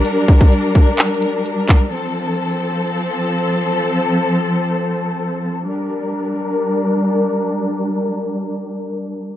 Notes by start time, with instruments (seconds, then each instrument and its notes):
Already playing: string section G3 D4 A#4
0.05 closed hi-hat
0.28 kick, closed hi-hat
0.41 kick
0.52 closed hi-hat
0.75 kick, closed hi-hat
0.99 clap, closed hi-hat
1.06 closed hi-hat
1.14 closed hi-hat
1.22 closed hi-hat
1.46 closed hi-hat
1.69 kick, clap, closed hi-hat
1.92 string section F3 C4 A4
5.67 string section G3 D4 A#4